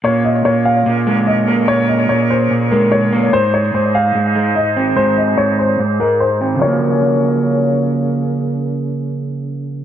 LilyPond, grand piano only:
\new Staff \with { instrumentName = "Grand piano" } { \time 4/4 \key bes \minor \tempo 4 = 146 des''8 ees''8 des''8 f''4. ees''4 | des''8 ees''8 des''8 c''8 r8 bes'8 des''4 | c''8 des''8 c''8 f''4. ees''4 | c''8 ees''8 des''8 c''8 r8 bes'8 c''4 |
des''2. r4 | r1 | }